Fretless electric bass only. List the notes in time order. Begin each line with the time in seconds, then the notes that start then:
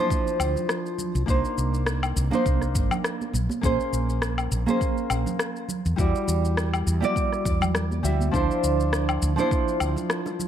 0.40 D2
1.15 C2
1.28 C2
1.58 C2
2.17 C2
2.46 C2
2.75 G1
3.34 A#1
3.63 A#1
3.93 A#1
4.52 A#1
5.10 A#1
5.86 E2
5.98 E2
6.28 E2
6.87 E2
7.46 E2
8.04 D2
8.34 D2
8.63 D2
9.22 D2
9.81 D2